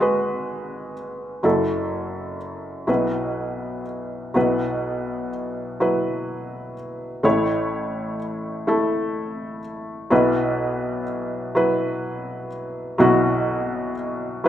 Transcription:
Already playing: G#1 G#2 B4
0.00 G#3 F#4 B4
1.43 F#1 F#2 F#3 E4 A4
2.87 B1 B2 F#3 E4 B4
4.34 B1 B2 F#3 E4 B4
5.80 F#3 E4 B4
7.23 A1 A2 A3 E4 C#5
8.67 A3 E4 A4
10.10 B1 B2 F#3 E4 B4
11.55 F#3 E4 B4
12.98 B1 B2 F#3 E4 F#4
14.44 F#3 E4

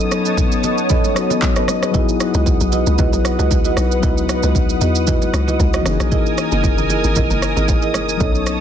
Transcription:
Already playing: F#3 B3 C#4 D#4 A4 C#5 D#5 A5 D#6
0.00 shaker
0.11 cross-stick, shaker
0.25 B3 A4 C#5 D#5, shaker
0.37 kick, high bongo, low conga, shaker
0.52 shaker
0.64 B3 A4 C#5 D#5, low bongo, shaker
0.78 shaker
0.89 B3 A4 C#5 D#5, kick, low bongo, low conga, shaker
1.04 high bongo, shaker
1.14 F#3 B3 C#4 D#4 F#4, cross-stick, shaker
1.30 B3 A4 C#5 D#5, low bongo, shaker
1.42 A4 C#5, kick, clap, high bongo, shaker
1.56 B3 A4 B4 C#5 D#5, cross-stick, shaker
1.68 cross-stick, high bongo, shaker
1.83 G#4 B4, cross-stick, shaker
1.91 F#3 B3 D#4 E4 F#4 B4 D#5 F#5, kick, low conga, shaker
1.96 E4 G#4
2.09 shaker
2.20 cross-stick, shaker
2.34 C#2 E4 F#4 B4 D#5, shaker
2.46 kick, high bongo, low conga, shaker
2.60 B1, shaker
2.72 E4 F#4 B4 D#5, low bongo, shaker
2.87 C#2, shaker
2.98 C#2 E4 F#4 B4 D#5, kick, low bongo, low conga, shaker
3.13 B1, high bongo, shaker
3.25 cross-stick, shaker
3.39 C#2 E4 F#4 B4 D#5, low bongo, shaker
3.51 kick, high bongo, shaker
3.65 E4 F#4 B4 D#5, shaker
3.77 B1, cross-stick, high bongo, shaker
3.92 shaker
3.99 C#2 F#3 B3 D#4 E4 F#4 B4 D#5, kick, low conga, shaker
4.05 E4 B4
4.18 shaker
4.29 cross-stick, shaker
4.43 C#2 E4 F#4 B4 D#5, shaker
4.55 kick, high bongo, low conga, shaker
4.69 shaker
4.81 E2 E4 F#4 B4 D#5, low bongo, shaker
4.95 shaker
5.07 E4 F#4 B4 D#5, kick, low bongo, low conga, shaker
5.22 high bongo, shaker
5.33 C#2, cross-stick, shaker
5.48 E4 F#4 B4 D#5, low bongo, shaker
5.60 C#2, kick, high bongo, shaker
5.73 E4 F#4 B4 D#5, cross-stick, shaker
5.82 F#1 E3 A#3 C#4 A#4 G#5 D#6, cross-stick, high bongo, shaker
5.88 D#4 G#4
6.00 A#1, cross-stick, shaker
6.11 E4 G#4 A#4 D#5, kick, low conga, shaker
6.26 shaker
6.38 cross-stick, shaker
6.52 F#1 E4 G#4 A#4 D#5, shaker
6.64 kick, high bongo, low conga, shaker
6.78 F#1, shaker
6.90 E4 G#4 A#4 D#5, low bongo, shaker
7.04 G#1, shaker
7.16 G#1 E4 G#4 A#4 D#5, kick, low bongo, low conga, shaker
7.30 F#1, high bongo, shaker
7.42 cross-stick, shaker
7.56 G#1 E4 G#4 A#4 D#5, low bongo, shaker
7.68 kick, high bongo, shaker
7.82 E4 G#4 A#4 D#5, shaker
7.94 F#1, cross-stick, high bongo, shaker
8.09 shaker
8.17 B1 F#3 B3 C#4 A4 C#5 D#5 A5, kick, low conga, shaker
8.22 D#4 A4
8.35 shaker
8.46 cross-stick, shaker

